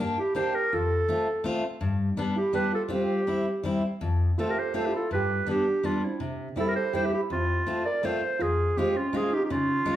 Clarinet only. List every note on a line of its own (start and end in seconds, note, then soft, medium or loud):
0.18 0.35 G4 medium
0.36 0.56 C5 medium
0.55 0.75 A#4 medium
0.74 1.65 A4 medium
2.37 2.54 G4 medium
2.55 2.72 B4 medium
2.74 2.82 A4 medium
2.94 3.81 G4 medium
4.40 4.51 A4 medium
4.50 4.60 A#4 medium
4.59 4.75 C5 medium
4.75 4.87 C5 medium
4.86 4.94 G4 medium
4.95 5.11 A4 medium
5.12 5.46 B4 medium
5.50 5.87 G4 medium
5.85 6.06 F4 medium
6.05 6.22 E4 medium
6.59 6.69 A4 medium
6.68 6.75 A#4 medium
6.76 6.92 C5 medium
6.95 7.07 C5 medium
7.06 7.13 G4 medium
7.14 7.22 G4 medium
7.32 7.82 F4 medium
7.85 8.07 D5 medium
8.05 8.43 C5 medium
8.42 8.79 G#4 medium
8.78 8.98 G4 medium
8.96 9.18 F4 medium
9.16 9.35 G#4 medium
9.34 9.44 G4 medium
9.45 9.53 G4 medium
9.51 9.96 F4 medium